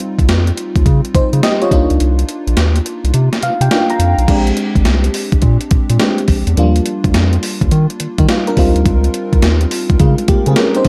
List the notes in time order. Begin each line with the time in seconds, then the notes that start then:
Already playing: G3 C4 D#4 F4
0.00 closed hi-hat
0.19 C2, kick, closed hi-hat
0.28 F2, snare, closed hi-hat
0.47 closed hi-hat
0.57 closed hi-hat
0.76 D#2, kick, closed hi-hat
0.86 C#3, kick, closed hi-hat
1.05 closed hi-hat
1.15 C#3 D#4 C5, kick, closed hi-hat
1.33 C#3, closed hi-hat
1.43 G4 D#5, snare, closed hi-hat
1.62 F4 C#5, closed hi-hat
1.71 C2 A#3 D4 D#4 F4, kick, closed hi-hat
1.90 C#2, closed hi-hat
2.00 C2, closed hi-hat
2.19 closed hi-hat
2.29 closed hi-hat
2.47 A#1, closed hi-hat
2.57 D#2, snare, closed hi-hat
2.76 closed hi-hat
2.86 closed hi-hat
3.04 C2, closed hi-hat
3.14 C3, closed hi-hat
3.33 snare, closed hi-hat
3.43 C3 F5, closed hi-hat
3.61 C3 G5, closed hi-hat
3.71 A#3 D4 D#4 F4 G5, snare, closed hi-hat
3.90 A#5, closed hi-hat
3.99 F2, closed hi-hat
4.18 B1, closed hi-hat
4.28 A#1 G#3 C4 D4 G4, kick, closed hi-hat, crash
4.47 closed hi-hat
4.57 closed hi-hat
4.75 G#1, kick, closed hi-hat
4.85 C2, snare, closed hi-hat
5.04 closed hi-hat
5.14 open hi-hat
5.32 A#1, kick, closed hi-hat
5.42 A#2, kick, closed hi-hat
5.61 closed hi-hat
5.71 A#2, kick, closed hi-hat
5.90 A#2, closed hi-hat
6.00 G#3 C4 D4 G4, snare, closed hi-hat
6.18 closed hi-hat
6.28 A#1, kick, open hi-hat
6.47 E2, closed hi-hat
6.57 D#2 F3 A#3 D4 F4, closed hi-hat
6.63 G3
6.76 closed hi-hat
6.86 closed hi-hat
7.04 D2, kick, closed hi-hat
7.14 F2, snare, closed hi-hat
7.33 closed hi-hat
7.43 open hi-hat
7.61 D#2, kick, closed hi-hat
7.71 D#3, closed hi-hat
7.90 closed hi-hat
8.00 D#3, closed hi-hat
8.18 D#3 G3 D#4, kick, closed hi-hat
8.29 F4, snare, closed hi-hat
8.47 D4 A#4, closed hi-hat
8.57 C#2 G3 C4 D#4 F4, kick, open hi-hat
8.75 D2, closed hi-hat
8.86 C#2, kick, closed hi-hat
9.04 closed hi-hat
9.14 closed hi-hat
9.33 C2, kick, closed hi-hat
9.42 D#2, snare, closed hi-hat
9.61 closed hi-hat
9.71 open hi-hat
9.90 C#2, kick, closed hi-hat
10.00 C#3 G#3 F4, kick, closed hi-hat
10.18 closed hi-hat
10.28 C#3 A#3 G4, kick, closed hi-hat
10.46 C#3 C4 G#4, closed hi-hat
10.56 C#4 A#4, snare, closed hi-hat
10.75 D#4 C5, closed hi-hat
10.85 A#3, kick, open hi-hat